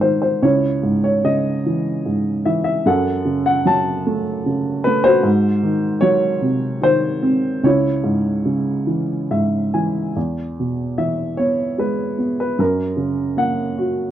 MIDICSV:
0, 0, Header, 1, 2, 480
1, 0, Start_track
1, 0, Tempo, 819672
1, 256, Time_signature, 3, 2, 24, 8
1, 1211, Tempo, 793651
1, 4091, Tempo, 827586
1, 6971, Tempo, 793651
1, 8371, End_track
2, 0, Start_track
2, 0, Title_t, "Upright piano"
2, 0, Program_c, 0, 0
2, 0, Control_c, 0, 64, 127
2, 0, Note_on_c, 0, 44, 52
2, 6, Note_on_c, 0, 51, 42
2, 6, Note_on_c, 0, 72, 61
2, 118, Note_off_c, 0, 72, 0
2, 126, Note_on_c, 0, 72, 57
2, 240, Note_off_c, 0, 44, 0
2, 246, Note_off_c, 0, 51, 0
2, 247, Note_on_c, 0, 37, 53
2, 249, Note_on_c, 0, 73, 67
2, 256, Note_off_c, 0, 72, 0
2, 260, Note_on_c, 0, 64, 45
2, 264, Control_c, 0, 64, 0
2, 358, Control_c, 0, 64, 127
2, 485, Note_on_c, 0, 44, 40
2, 599, Note_off_c, 0, 73, 0
2, 608, Note_on_c, 0, 73, 66
2, 728, Note_on_c, 0, 49, 44
2, 730, Note_on_c, 0, 75, 63
2, 736, Note_off_c, 0, 73, 0
2, 954, Note_off_c, 0, 64, 0
2, 974, Note_on_c, 0, 52, 41
2, 1066, Note_off_c, 0, 75, 0
2, 1198, Note_off_c, 0, 44, 0
2, 1206, Note_on_c, 0, 44, 40
2, 1438, Note_off_c, 0, 52, 0
2, 1446, Note_on_c, 0, 76, 58
2, 1447, Note_on_c, 0, 52, 50
2, 1550, Note_off_c, 0, 76, 0
2, 1559, Note_on_c, 0, 76, 67
2, 1663, Note_off_c, 0, 49, 0
2, 1664, Note_off_c, 0, 37, 0
2, 1676, Note_off_c, 0, 44, 0
2, 1682, Note_off_c, 0, 52, 0
2, 1687, Note_on_c, 0, 42, 56
2, 1689, Note_off_c, 0, 76, 0
2, 1693, Note_on_c, 0, 78, 72
2, 1694, Note_on_c, 0, 69, 52
2, 1701, Control_c, 0, 64, 0
2, 1799, Control_c, 0, 64, 127
2, 1927, Note_on_c, 0, 49, 45
2, 2043, Note_off_c, 0, 78, 0
2, 2052, Note_on_c, 0, 78, 72
2, 2170, Note_on_c, 0, 54, 50
2, 2176, Note_off_c, 0, 78, 0
2, 2180, Note_on_c, 0, 81, 78
2, 2389, Note_off_c, 0, 69, 0
2, 2419, Note_on_c, 0, 57, 47
2, 2514, Note_off_c, 0, 81, 0
2, 2647, Note_off_c, 0, 49, 0
2, 2656, Note_on_c, 0, 49, 47
2, 2887, Note_on_c, 0, 71, 83
2, 2894, Note_off_c, 0, 57, 0
2, 2903, Note_on_c, 0, 57, 51
2, 3008, Note_on_c, 0, 72, 86
2, 3014, Note_off_c, 0, 71, 0
2, 3018, Note_on_c, 0, 66, 58
2, 3105, Note_off_c, 0, 42, 0
2, 3107, Note_off_c, 0, 54, 0
2, 3118, Note_off_c, 0, 49, 0
2, 3125, Note_on_c, 0, 44, 60
2, 3128, Note_off_c, 0, 57, 0
2, 3141, Control_c, 0, 64, 0
2, 3261, Control_c, 0, 64, 127
2, 3366, Note_on_c, 0, 51, 50
2, 3594, Note_on_c, 0, 73, 92
2, 3603, Note_on_c, 0, 54, 53
2, 3619, Note_off_c, 0, 72, 0
2, 3703, Note_off_c, 0, 66, 0
2, 3841, Note_on_c, 0, 48, 47
2, 4062, Note_off_c, 0, 73, 0
2, 4071, Note_off_c, 0, 51, 0
2, 4081, Note_on_c, 0, 51, 49
2, 4093, Note_on_c, 0, 72, 86
2, 4320, Note_on_c, 0, 60, 54
2, 4539, Note_off_c, 0, 44, 0
2, 4541, Note_off_c, 0, 48, 0
2, 4541, Note_off_c, 0, 54, 0
2, 4545, Note_off_c, 0, 51, 0
2, 4554, Note_off_c, 0, 60, 0
2, 4557, Note_on_c, 0, 37, 55
2, 4562, Note_on_c, 0, 73, 72
2, 4571, Control_c, 0, 64, 0
2, 4572, Note_on_c, 0, 64, 55
2, 4580, Note_off_c, 0, 72, 0
2, 4679, Control_c, 0, 64, 127
2, 4791, Note_on_c, 0, 44, 47
2, 5033, Note_on_c, 0, 49, 47
2, 5272, Note_on_c, 0, 52, 44
2, 5505, Note_off_c, 0, 73, 0
2, 5510, Note_off_c, 0, 64, 0
2, 5519, Note_off_c, 0, 44, 0
2, 5527, Note_on_c, 0, 44, 43
2, 5529, Note_on_c, 0, 76, 55
2, 5760, Note_off_c, 0, 76, 0
2, 5772, Note_off_c, 0, 52, 0
2, 5779, Note_on_c, 0, 80, 52
2, 5781, Note_on_c, 0, 52, 46
2, 5993, Note_off_c, 0, 37, 0
2, 5993, Note_off_c, 0, 49, 0
2, 6004, Note_off_c, 0, 44, 0
2, 6004, Note_off_c, 0, 80, 0
2, 6015, Note_off_c, 0, 52, 0
2, 6024, Note_on_c, 0, 40, 46
2, 6028, Control_c, 0, 64, 0
2, 6135, Control_c, 0, 64, 127
2, 6275, Note_on_c, 0, 47, 35
2, 6497, Note_on_c, 0, 52, 38
2, 6499, Note_on_c, 0, 76, 61
2, 6725, Note_on_c, 0, 73, 63
2, 6736, Note_on_c, 0, 59, 40
2, 6743, Note_off_c, 0, 76, 0
2, 6963, Note_on_c, 0, 56, 37
2, 6970, Note_on_c, 0, 71, 55
2, 6974, Note_off_c, 0, 73, 0
2, 7196, Note_off_c, 0, 59, 0
2, 7199, Note_off_c, 0, 47, 0
2, 7205, Note_on_c, 0, 59, 41
2, 7311, Note_off_c, 0, 71, 0
2, 7337, Note_on_c, 0, 71, 60
2, 7431, Note_off_c, 0, 52, 0
2, 7433, Note_off_c, 0, 40, 0
2, 7436, Note_off_c, 0, 56, 0
2, 7443, Note_off_c, 0, 59, 0
2, 7450, Note_on_c, 0, 42, 53
2, 7458, Note_on_c, 0, 70, 60
2, 7459, Note_off_c, 0, 71, 0
2, 7462, Control_c, 0, 64, 0
2, 7563, Control_c, 0, 64, 127
2, 7681, Note_on_c, 0, 49, 41
2, 7924, Note_on_c, 0, 58, 46
2, 7931, Note_on_c, 0, 78, 69
2, 7947, Note_off_c, 0, 70, 0
2, 8171, Note_on_c, 0, 66, 44
2, 8371, Note_off_c, 0, 42, 0
2, 8371, Note_off_c, 0, 49, 0
2, 8371, Note_off_c, 0, 58, 0
2, 8371, Note_off_c, 0, 66, 0
2, 8371, Note_off_c, 0, 78, 0
2, 8371, End_track
0, 0, End_of_file